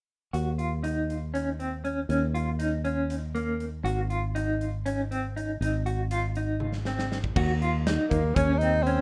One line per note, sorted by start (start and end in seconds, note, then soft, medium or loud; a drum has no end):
0.33 2.06 D#2 medium
0.33 0.48 F#4 medium
0.33 closed hi-hat medium
0.58 0.73 F4 medium
0.58 closed hi-hat soft
0.84 1.13 D#4 medium
0.84 closed hi-hat medium
1.10 closed hi-hat soft
1.34 1.48 C#4 medium
1.34 closed hi-hat medium
1.59 1.74 C4 medium
1.59 closed hi-hat soft
1.85 1.99 C#4 medium
1.85 closed hi-hat soft
2.09 3.81 D#2 medium
2.09 2.24 C#4 medium
2.09 closed hi-hat medium
2.34 2.49 F4 medium
2.34 closed hi-hat soft
2.59 2.74 D#4 medium
2.59 closed hi-hat medium
2.84 3.14 C#4 medium
2.84 closed hi-hat soft
3.10 closed hi-hat medium
3.35 3.64 A#3 medium
3.35 closed hi-hat soft
3.60 closed hi-hat soft
3.84 5.57 G#1 medium
3.84 3.99 F#4 medium
3.84 closed hi-hat medium
4.10 4.25 F4 medium
4.10 closed hi-hat soft
4.35 4.64 D#4 medium
4.35 closed hi-hat medium
4.61 closed hi-hat soft
4.86 5.00 C#4 medium
4.86 closed hi-hat medium
5.11 5.25 C4 medium
5.11 closed hi-hat soft
5.36 5.51 D#4 medium
5.36 closed hi-hat soft
5.61 7.33 G#1 medium
5.61 5.76 D#4 medium
5.61 closed hi-hat medium
5.86 6.00 F#4 medium
5.86 closed hi-hat medium
6.11 6.26 F4 medium
6.11 closed hi-hat medium
6.36 6.65 D#4 medium
6.36 closed hi-hat soft
6.60 high tom soft
6.73 snare soft
6.85 7.15 C4 medium
6.85 snare medium
6.99 snare medium
7.12 snare medium
7.24 kick medium
7.36 7.97 D#2 medium
7.36 7.51 F#4 medium
7.36 kick medium
7.36 crash medium
7.62 7.76 F4 medium
7.62 closed hi-hat soft
7.87 8.15 D#4 medium
7.87 snare medium
7.87 closed hi-hat medium
8.09 8.32 D#2 medium
8.09 8.37 A#3 medium
8.09 kick medium
8.09 closed hi-hat medium
8.35 8.97 D#2 medium
8.35 8.59 C#4 medium
8.35 8.51 C#4 medium
8.35 kick medium
8.35 closed hi-hat medium
8.58 8.84 D#4 medium
8.58 closed hi-hat medium
8.62 8.76 C4 medium
8.82 9.01 C4 medium
8.87 9.01 C#4 medium
8.87 closed hi-hat soft